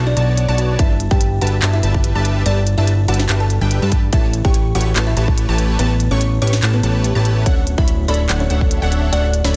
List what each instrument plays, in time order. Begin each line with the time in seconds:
Already playing: analog synth bass B1
0.07 kalimba D4 D5
0.17 analog synth bass B1, analog polysynth B3 F#4 C#5 D5 A5, synth pluck A5, closed hi-hat
0.37 closed hi-hat
0.48 analog synth bass B1, analog polysynth B3 F#4 C#5 D5 A5, synth pluck A5
0.58 closed hi-hat
0.79 analog synth bass G1, analog polysynth G3 G4 B4 E5 A5, kalimba E4 E5, synth pluck A5, kick, closed hi-hat
1.00 closed hi-hat
1.11 analog synth bass G1, analog polysynth G3 G4 B4 E5 A5, kalimba G4 G5, synth pluck A5, kick
1.21 closed hi-hat
1.42 analog synth bass G1, analog polysynth G3 G4 B4 E5 A5, kalimba F#4 F#5, synth pluck A5, closed hi-hat
1.47 closed hi-hat
1.62 analog synth bass G1, analog polysynth G3 G4 B4 E5 A5, synth pluck A5, clap, closed hi-hat
1.73 kalimba E4 E5
1.83 analog synth bass G1, analog polysynth G3 G4 B4 E5 A5, synth pluck A5, closed hi-hat
1.94 kick
2.04 closed hi-hat
2.15 analog synth bass G1, analog polysynth G3 G4 B4 E5 A5, synth pluck A5
2.25 closed hi-hat
2.46 analog synth bass G1, analog polysynth G3 G4 B4 E5 A5, kalimba D4 D5, synth pluck A5, closed hi-hat
2.67 closed hi-hat
2.78 analog synth bass G1, analog polysynth G3 G4 B4 E5 A5, kalimba E4 E5, synth pluck A5
2.87 closed hi-hat
3.08 analog synth bass G1, analog polysynth G3 G4 B4 E5 A5, kalimba F#4 F#5, synth pluck A5, closed hi-hat
3.14 closed hi-hat
3.20 snare
3.29 analog synth bass G1, analog polysynth G3 G4 B4 E5 A5, synth pluck A5, clap, closed hi-hat
3.40 kalimba A4 A5
3.50 closed hi-hat
3.61 analog synth bass G1, analog polysynth G3 G4 B4 E5 G5, synth pluck G5
3.71 closed hi-hat
3.82 analog synth bass G2, analog polysynth G3 G4 B4 E5 A5, synth pluck A5
3.92 kick, closed hi-hat
4.13 analog synth bass A1, analog polysynth A3 G4 B4 C#5 A5, kalimba E4 E5, synth pluck A5, kick, closed hi-hat
4.33 closed hi-hat
4.45 analog polysynth A3 G4 B4 C#5 C#6, kalimba G4 G5, synth pluck C#6, kick
4.54 closed hi-hat
4.75 analog synth bass A1, analog polysynth A3 G4 B4 C#5 C#6, kalimba F#4 F#5, synth pluck C#6, closed hi-hat
4.81 closed hi-hat
4.96 analog synth bass A1, analog polysynth A3 G4 B4 C#5 A5, synth pluck A5, clap, closed hi-hat
5.07 kalimba E4 E5
5.17 analog synth bass A1, analog polysynth A3 G4 B4 C#5 A5, synth pluck A5, closed hi-hat
5.28 kick
5.38 closed hi-hat
5.49 analog synth bass A1, analog polysynth A3 G4 B4 C#5 A5, synth pluck A5
5.58 closed hi-hat
5.79 analog synth bass A1, analog polysynth A3 G4 B4 C#5 A5, kalimba B3 B4, synth pluck A5, closed hi-hat
6.00 closed hi-hat
6.11 analog synth bass A1, analog polysynth A3 G4 B4 C#5 C#6, kalimba C#4 C#5, synth pluck C#6
6.21 closed hi-hat
6.42 analog synth bass A1, analog polysynth A3 G4 B4 C#5 C#6, kalimba C#4 C#5, synth pluck C#6, closed hi-hat
6.47 closed hi-hat
6.53 snare
6.63 analog synth bass A1, analog polysynth A3 G4 B4 C#5 A5, synth pluck A5, clap, closed hi-hat
6.74 kalimba B3 B4
6.83 analog synth bass A1, analog polysynth A3 G4 B4 C#5 A5, synth pluck A5, closed hi-hat
7.04 closed hi-hat
7.15 analog synth bass A1, analog polysynth A3 G4 B4 C#5 A5, synth pluck A5
7.25 closed hi-hat
7.46 analog synth bass D1, kalimba C#4 C#5, analog polysynth D4 F#5, synth pluck F#5, kick, closed hi-hat
7.67 closed hi-hat
7.78 analog synth bass D1, analog polysynth D4 A4 C#5 E5 B5, kalimba E4 E5, synth pluck B5, kick
7.88 closed hi-hat
8.08 analog synth bass D1, kalimba D4 D5, analog polysynth D4 A4 C#5 E5 B5, synth pluck B5, closed hi-hat
8.14 closed hi-hat
8.29 analog synth bass D1, analog polysynth D4 A4 C#5 E5 F#5, synth pluck F#5, clap, closed hi-hat
8.40 kalimba C#4 C#5
8.50 analog synth bass D1, analog polysynth D4 A4 C#5 E5 F#5, synth pluck F#5, closed hi-hat
8.61 kick
8.71 closed hi-hat
8.82 analog synth bass D1, analog polysynth D4 A4 C#5 E5 F#5, synth pluck F#5
8.92 closed hi-hat
9.12 analog synth bass D1, analog polysynth D4 A4 C#5 E5 F#5, kalimba D4 D5, synth pluck F#5, closed hi-hat
9.34 closed hi-hat
9.44 analog synth bass D1, kalimba C#4 C#5, analog polysynth D4 A4 C#5 E5 B5, synth pluck B5, snare